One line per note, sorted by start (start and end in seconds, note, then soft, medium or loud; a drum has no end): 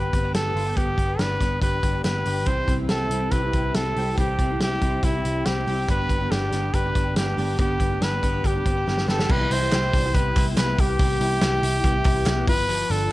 0.00 0.33 B3 medium
0.00 0.13 D4 medium
0.00 0.55 G4 medium
0.00 0.34 B4 medium
0.13 0.31 G1 medium
0.13 0.24 C4 medium
0.13 kick medium
0.13 closed hi-hat medium
0.24 1.19 D4 soft
0.33 0.51 G1 loud
0.33 0.76 B3 medium
0.33 0.78 A4 medium
0.33 snare loud
0.33 closed hi-hat loud
0.54 0.72 G1 medium
0.54 0.66 F4 medium
0.54 open hi-hat medium
0.66 1.61 G4 medium
0.76 0.94 G1 medium
0.76 0.97 B3 medium
0.76 1.22 G4 medium
0.76 kick medium
0.76 closed hi-hat medium
0.98 1.15 G1 medium
0.98 1.40 B3 medium
0.98 kick medium
0.98 closed hi-hat medium
1.19 1.37 G1 medium
1.19 1.82 D4 medium
1.19 1.62 B4 loud
1.19 snare loud
1.19 closed hi-hat medium
1.40 1.58 G1 medium
1.40 2.04 B3 medium
1.40 kick medium
1.40 snare soft
1.40 closed hi-hat medium
1.62 1.79 G1 medium
1.62 2.26 G4 medium
1.62 2.02 B4 medium
1.62 kick medium
1.62 closed hi-hat medium
1.83 2.01 G1 medium
1.83 2.51 D4 soft
1.83 kick medium
1.83 closed hi-hat medium
2.04 2.22 G1 medium
2.04 2.52 B3 medium
2.04 2.48 B4 medium
2.04 snare loud
2.04 closed hi-hat loud
2.25 2.47 G1 medium
2.25 3.33 G4 medium
2.25 open hi-hat medium
2.46 2.64 C2 medium
2.46 2.78 C3 medium
2.46 4.17 E3 medium
2.46 2.79 G3 medium
2.46 2.79 C4 medium
2.46 2.78 E4 medium
2.46 2.77 G4 medium
2.46 2.77 C5 loud
2.46 kick loud
2.46 closed hi-hat medium
2.68 2.86 C2 medium
2.68 3.11 C4 soft
2.68 kick medium
2.68 closed hi-hat medium
2.78 3.11 C4 soft
2.78 3.11 E4 soft
2.78 3.11 G4 soft
2.89 3.07 C2 medium
2.89 3.53 E4 medium
2.89 3.33 A4 loud
2.89 snare loud
2.89 closed hi-hat medium
3.09 3.28 C2 medium
3.09 3.43 G3 medium
3.09 3.75 C4 medium
3.09 3.43 C4 medium
3.09 3.43 E4 medium
3.09 closed hi-hat medium
3.14 3.42 G4 medium
3.31 3.50 C2 medium
3.31 3.97 G4 medium
3.31 3.77 B4 medium
3.31 kick medium
3.31 closed hi-hat medium
3.43 3.75 C4 soft
3.43 3.75 E4 soft
3.43 3.75 G4 soft
3.53 3.71 C2 medium
3.53 4.61 E4 medium
3.53 kick medium
3.53 closed hi-hat medium
3.74 3.92 C2 medium
3.74 3.96 G3 medium
3.74 3.97 C4 medium
3.74 4.39 C4 medium
3.74 3.97 E4 medium
3.74 3.97 G4 medium
3.74 4.18 A4 medium
3.74 snare loud
3.74 closed hi-hat loud
3.96 4.14 C2 medium
3.96 4.16 G3 medium
3.96 4.17 C4 medium
3.96 4.17 E4 medium
3.96 5.04 G4 medium
3.96 4.18 G4 medium
3.96 open hi-hat medium
4.17 4.35 C2 medium
4.17 4.49 C3 medium
4.17 5.89 E3 medium
4.17 4.50 G3 medium
4.17 4.50 C4 medium
4.17 4.49 E4 medium
4.17 4.58 G4 medium
4.17 4.48 G4 medium
4.17 kick medium
4.17 closed hi-hat medium
4.39 4.56 C2 medium
4.39 4.82 C4 medium
4.39 kick medium
4.39 closed hi-hat medium
4.49 4.81 C4 soft
4.49 4.81 E4 soft
4.49 4.81 G4 medium
4.59 4.77 C2 medium
4.59 5.25 E4 medium
4.59 5.06 G4 medium
4.59 snare loud
4.59 closed hi-hat medium
4.81 4.99 C2 medium
4.81 5.13 G3 soft
4.81 5.14 C4 medium
4.81 5.46 C4 medium
4.81 5.13 E4 medium
4.81 5.12 G4 medium
4.81 kick medium
4.81 closed hi-hat medium
5.03 5.21 C2 medium
5.03 5.47 E4 medium
5.03 5.68 G4 medium
5.03 kick medium
5.03 closed hi-hat medium
5.13 5.45 C4 soft
5.13 5.46 E4 soft
5.13 5.45 G4 medium
5.25 5.42 C2 medium
5.25 5.94 E4 medium
5.25 closed hi-hat medium
5.45 5.63 C2 loud
5.45 5.65 G3 soft
5.45 5.67 C4 medium
5.45 5.89 C4 medium
5.45 5.67 E4 medium
5.45 5.88 G4 medium
5.45 5.68 G4 medium
5.45 snare loud
5.45 closed hi-hat medium
5.66 5.85 C2 medium
5.66 5.88 G3 medium
5.66 5.89 C4 medium
5.66 5.89 E4 medium
5.66 6.74 G4 medium
5.66 5.88 G4 medium
5.66 open hi-hat medium
5.88 6.06 G1 loud
5.88 6.20 G2 medium
5.88 6.20 D3 medium
5.88 6.20 G3 medium
5.88 6.20 B3 medium
5.88 6.11 B3 medium
5.88 6.19 D4 medium
5.88 6.18 G4 medium
5.88 6.33 B4 medium
5.88 kick loud
5.88 closed hi-hat medium
6.09 6.27 G1 medium
6.09 6.53 B3 medium
6.09 kick medium
6.09 closed hi-hat medium
6.19 6.51 G3 soft
6.19 6.51 B3 soft
6.19 6.52 D4 soft
6.19 6.52 G4 medium
6.31 6.49 G1 medium
6.31 6.95 D4 medium
6.31 6.76 G4 medium
6.31 snare medium
6.31 closed hi-hat medium
6.52 6.69 G1 medium
6.52 6.84 G3 medium
6.52 6.84 B3 medium
6.52 7.16 B3 medium
6.52 6.84 D4 medium
6.52 6.83 G4 medium
6.52 snare soft
6.52 closed hi-hat medium
6.73 6.91 G1 medium
6.73 7.37 G4 medium
6.73 7.17 B4 medium
6.73 kick medium
6.73 closed hi-hat medium
6.84 7.15 G3 soft
6.84 7.16 B3 soft
6.84 7.17 D4 soft
6.84 7.16 G4 medium
6.95 7.13 G1 medium
6.95 8.00 D4 soft
6.95 kick medium
6.95 closed hi-hat medium
7.16 7.33 G1 medium
7.16 7.36 G3 medium
7.16 7.58 B3 medium
7.16 7.37 B3 medium
7.16 7.38 D4 medium
7.16 7.56 G4 medium
7.16 7.38 G4 medium
7.16 snare loud
7.16 closed hi-hat loud
7.37 7.55 G1 loud
7.37 7.58 G3 medium
7.37 7.58 B3 medium
7.37 7.59 D4 medium
7.37 8.44 G4 medium
7.37 7.59 G4 medium
7.37 open hi-hat medium
7.58 7.76 G1 medium
7.58 7.91 G2 medium
7.58 7.91 D3 medium
7.58 7.91 G3 medium
7.58 7.80 B3 medium
7.58 7.91 B3 medium
7.58 7.91 D4 medium
7.58 8.05 G4 medium
7.58 7.90 G4 medium
7.58 kick loud
7.58 closed hi-hat medium
7.80 7.97 G1 loud
7.80 8.23 B3 medium
7.80 kick medium
7.80 closed hi-hat medium
7.91 8.21 G3 soft
7.91 8.23 B3 soft
7.91 8.23 D4 soft
7.91 8.23 G4 medium
8.01 8.19 G1 medium
8.01 8.65 D4 medium
8.01 8.48 B4 medium
8.01 snare loud
8.01 closed hi-hat medium
8.23 8.40 G1 medium
8.23 8.55 G3 medium
8.23 8.87 B3 medium
8.23 8.55 B3 medium
8.23 8.55 D4 medium
8.23 8.54 G4 medium
8.23 kick medium
8.23 closed hi-hat medium
8.44 8.61 G1 medium
8.44 9.10 G4 medium
8.44 9.09 G4 medium
8.44 kick medium
8.44 closed hi-hat medium
8.55 8.85 G3 soft
8.55 8.86 B3 soft
8.55 8.87 D4 soft
8.55 8.87 G4 soft
8.66 8.83 G1 medium
8.66 8.77 C4 medium
8.66 kick medium
8.66 closed hi-hat medium
8.77 9.34 D4 soft
8.87 9.05 G1 medium
8.87 9.07 G3 medium
8.87 9.08 B3 medium
8.87 10.16 B3 medium
8.87 9.08 D4 medium
8.87 9.09 G4 medium
8.87 snare medium
8.98 snare medium
9.07 9.25 G1 medium
9.07 9.29 G3 medium
9.07 9.30 B3 medium
9.07 9.30 D4 medium
9.07 9.74 G4 medium
9.07 9.31 G4 medium
9.07 9.33 A4 medium
9.07 snare medium
9.19 snare medium
9.29 9.47 C2 loud
9.29 11.00 E3 medium
9.29 9.54 B4 medium
9.29 kick loud
9.29 crash loud
9.51 9.68 C2 medium
9.51 9.94 E4 medium
9.51 10.16 C5 loud
9.51 hi-hat pedal medium
9.51 open hi-hat medium
9.72 9.90 C2 loud
9.72 10.79 G4 medium
9.72 snare loud
9.72 clap medium
9.72 hi-hat pedal medium
9.72 open hi-hat medium
9.93 10.11 C2 loud
9.93 10.05 D4 medium
9.93 kick medium
9.93 snare soft
9.93 hi-hat pedal medium
9.93 open hi-hat medium
10.05 10.36 E4 medium
10.14 10.32 C2 loud
10.14 10.58 B3 medium
10.14 10.46 B4 medium
10.14 kick medium
10.14 hi-hat pedal medium
10.14 open hi-hat medium
10.36 10.53 C2 loud
10.36 11.20 E4 medium
10.36 kick medium
10.36 clap medium
10.36 hi-hat pedal medium
10.36 open hi-hat medium
10.57 10.74 C2 loud
10.57 11.84 B3 medium
10.57 10.82 B4 medium
10.57 snare loud
10.57 clap loud
10.57 hi-hat pedal medium
10.57 open hi-hat loud
10.78 10.96 C2 loud
10.78 11.42 G4 medium
10.78 12.48 G4 loud
10.78 kick medium
10.78 hi-hat pedal medium
10.78 open hi-hat medium
10.99 11.17 C2 loud
10.99 12.48 E3 medium
10.99 kick loud
10.99 hi-hat pedal medium
10.99 open hi-hat medium
11.20 11.38 C2 loud
11.20 11.62 E4 medium
11.20 hi-hat pedal medium
11.20 open hi-hat medium
11.41 11.59 C2 loud
11.41 12.72 G4 medium
11.41 snare loud
11.41 clap medium
11.41 hi-hat pedal medium
11.41 open hi-hat medium
11.62 11.80 C2 medium
11.62 12.05 E4 medium
11.62 hi-hat pedal medium
11.62 open hi-hat medium
11.84 12.01 C2 loud
11.84 12.27 B3 medium
11.84 kick medium
11.84 hi-hat pedal medium
11.84 open hi-hat medium
12.04 12.23 C2 loud
12.04 12.53 E4 medium
12.04 kick loud
12.04 clap medium
12.04 hi-hat pedal medium
12.04 open hi-hat medium
12.26 12.48 C2 loud
12.26 12.72 B3 medium
12.26 snare loud
12.26 clap medium
12.26 hi-hat pedal medium
12.26 open hi-hat loud
12.47 12.83 G1 loud
12.47 12.67 F3 medium
12.47 12.93 B4 loud
12.47 kick loud
12.47 hi-hat pedal medium
12.47 open hi-hat medium
12.69 13.12 F3 medium
12.69 hi-hat pedal medium
12.69 open hi-hat medium
12.90 13.08 G1 medium
12.90 13.12 D4 medium
12.90 13.12 A4 medium
12.90 hi-hat pedal medium
12.90 open hi-hat medium